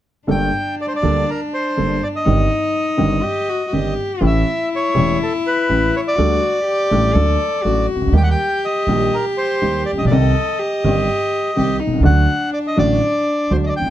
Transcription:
0.27 grand piano G1 G2 G3 A#3 D4 A4, upright bass G1, cello D4, bandoneon G5
0.81 bandoneon D5
0.88 bandoneon C5
0.96 bandoneon D5
1.02 grand piano D2 D3 G3 A#3 D4 A4, upright bass D2
1.30 bandoneon A#4
1.54 bandoneon C5
1.77 grand piano G1 G2 G3 A#3 D4 A4, upright bass G1
2.03 bandoneon D5
2.16 bandoneon D#5
2.24 grand piano G1 G2 D#3 C4 D4 G4, upright bass G1, cello D#4
2.97 grand piano G1 G2 D#3 C4 D4 G4, upright bass G1
3.23 cello G4
3.49 cello F#4
3.67 cello F#4
3.72 grand piano G1 G2 D#3 C4 D4 G4, upright bass G1, cello G4
4.21 grand piano A1 A2 E3 A3 C#4 G4, upright bass A1, cello E4
4.26 bandoneon E5
4.76 bandoneon C#5
4.94 grand piano E1 E2 E3 A3 C#4 G4, upright bass E1
5.23 bandoneon A4
5.47 bandoneon B4
5.69 grand piano A1 A2 E3 A3 C#4 G4, upright bass A1
5.96 bandoneon C#5
6.08 bandoneon D5
6.15 grand piano D2 D3 G3 A3 D4 A4, upright bass D2, cello F#4
6.64 cello G4
6.91 upright bass A1, grand piano A1 A2 G3 A3 D4 A4
7.14 grand piano D2 D3 F#3 A3 D4 A4, upright bass D2, cello A4
7.62 grand piano A1 A2 F#3 A3 D4 A4, upright bass A1, cello F#4
7.95 grand piano C2, upright bass C2
8.01 upright bass C#2, grand piano C#2
8.07 upright bass D2, grand piano D2
8.13 upright bass D#2, grand piano D#2 D#3 G3 A#3 G4, cello G4
8.17 bandoneon G5
8.23 bandoneon F#5
8.31 bandoneon G5
8.65 bandoneon D#5
8.87 upright bass A#1, grand piano A#1 A#2 D#3 G3 A#3 G4
9.14 bandoneon A#4
9.38 bandoneon C5
9.62 upright bass D#2, grand piano D#2 D#3 G3 A#3 G4
9.86 bandoneon D5
9.93 upright bass A1, grand piano A1
9.98 grand piano A#1, upright bass A#1, bandoneon D#5
10.05 upright bass B1, grand piano B1, bandoneon D5
10.10 upright bass C2, grand piano C2 C3 D#3 G3 C4 G4, cello A4, bandoneon D#5
10.59 cello G4
10.84 upright bass G1, grand piano G1 G2 D#3 G3 C4 G4
11.56 grand piano C2 C3 D#3 G3 C4 G4, upright bass C2, cello G4
11.80 cello D#4
11.87 grand piano B1, upright bass B1
11.93 grand piano C2, upright bass C2
11.98 grand piano C#2, upright bass C#2
12.03 grand piano D2 D3 F#3 A3 F#4, upright bass D2, cello D4, bandoneon F#5
12.54 bandoneon D5
12.67 bandoneon D#5
12.76 grand piano A1 A2 D3 F#3 A3 F#4, upright bass A1, bandoneon D5
13.51 upright bass D2, grand piano D2 D3 F#3 A3 F#4, bandoneon C5
13.66 bandoneon D5 D#5
13.77 grand piano E2, bandoneon G5
13.81 upright bass E1
13.86 grand piano F2

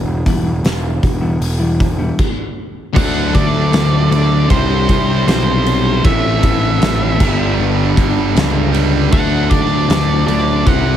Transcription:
Already playing: picked electric bass E1
0.06 muted clean electric guitar stroke
0.25 picked electric bass E1, clean electric guitar E3 G3 B3 E4, kick, open hi-hat
0.63 picked electric bass E1, muted clean electric guitar stroke, snare, open hi-hat
1.03 picked electric bass E1, kick, open hi-hat
1.21 clean electric guitar E3 G3 B3 E4
1.40 picked electric bass E1, open hi-hat
1.59 clean electric guitar E3 G3 B3 E4
1.80 kick, open hi-hat
1.98 clean electric guitar E3 G3 B3 E4
2.19 kick, crash
2.93 picked electric bass D2, distorted electric guitar D3 F#3 A3, lead electric guitar F#5, kick, crash
2.97 distorted electric guitar D4
3.34 picked electric bass D2, lead electric guitar D5, kick, ride
3.72 picked electric bass D2, snare, ride
4.11 picked electric bass D2, lead electric guitar D5, ride
4.47 picked electric bass C2, distorted electric guitar C3 G3 C4 E4, lead electric guitar C5, kick, ride
4.89 picked electric bass C2, kick, ride
5.27 picked electric bass B1, lead electric guitar C5, snare, ride
5.66 ride
6.02 picked electric bass A1, distorted electric guitar A2 E3 A3 C4 E4, lead electric guitar E5, kick, ride
6.43 picked electric bass A1, kick, ride
6.81 picked electric bass A1, snare, ride
7.17 picked electric bass G1, distorted electric guitar G2 D3 G3 B3, kick, crash
7.21 distorted electric guitar D4
7.58 picked electric bass G1
7.97 picked electric bass G1, kick, ride
8.35 picked electric bass C#2, snare, ride
8.72 overdriven electric guitar G2 D3 G3, ride
9.11 picked electric bass D2, distorted electric guitar D3 F#3 A3 D4, lead electric guitar F#5, kick, crash
9.50 picked electric bass D2, lead electric guitar D5, kick, ride
9.89 picked electric bass D2, snare, ride
10.27 picked electric bass D2, lead electric guitar D5, ride
10.65 picked electric bass C2, distorted electric guitar C3 G3 C4 E4, lead electric guitar F#5, kick, ride

